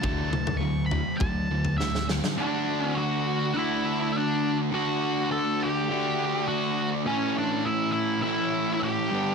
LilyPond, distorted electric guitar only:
\new Staff \with { instrumentName = "Distorted electric guitar" } { \clef bass \time 4/4 \key d \major \tempo 4 = 102 <d fis a>8 <d fis>8 <d fis>8 <d fis>8 <d fis>8 <d fis>8 <d fis>8 <d fis>8 | <d a d' fis'>2 <d a d' fis'>2 | <d a d' fis'>2 <d a d' fis'>2 | <a, e a cis' e'>2 <a, e a cis' e'>4. <g, d g b d'>8 | }